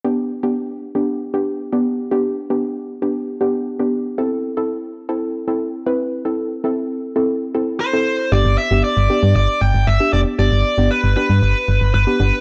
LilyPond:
<<
  \new Staff \with { instrumentName = "Lead electric guitar" } { \time 4/4 \key g \mixolydian \tempo 4 = 116 r1 | r1 | r1 | r2. c''4 |
d''8 e''8 d''4 d''8 g''8 e''8 d''8 | d''4 b'8 b'4. b'4 | }
  \new Staff \with { instrumentName = "Synth pluck" } { \time 4/4 \key g \mixolydian <b d' g'>8 r16 <b d' g'>8. r16 <b d' g'>8 r16 <b d' g'>8 r16 <b d' g'>8 r16 | <b d' g'>8 r16 <b d' g'>8. r16 <b d' g'>8 r16 <b d' g'>8 r16 <b d' g'>8 r16 | <c' e' a'>8 r16 <c' e' a'>8. r16 <c' e' a'>8 r16 <c' e' a'>8 r16 <c' e' b'>8 r16 | <c' e' a'>8 r16 <c' e' a'>8. r16 <c' e' a'>8 r16 <c' e' a'>8 r16 <c' e' a'>8 r16 |
<b d' g'>8 r16 <b d' g'>8 r16 <b d' g'>4~ <b d' g'>16 r8 <b d' g'>16 <b d' g'>16 r16 | <b d' g'>8 r16 <b d' g'>8 r16 <b d' g'>4~ <b d' g'>16 r8 <b d' g'>16 <b d' g'>16 r16 | }
  \new Staff \with { instrumentName = "FM bass" } { \clef bass \time 4/4 \key g \mixolydian r1 | r1 | r1 | r1 |
g,,16 g,,16 r16 g,,16 r16 g,,16 r16 g,16 g,,16 r16 g,,16 g,,16 g,,16 r16 f,,16 r16 | g,,16 g,,16 r16 g,,16 r16 g,,16 r16 g,16 g,,16 r16 g,,16 g,,16 g,,16 r16 g,,16 r16 | }
>>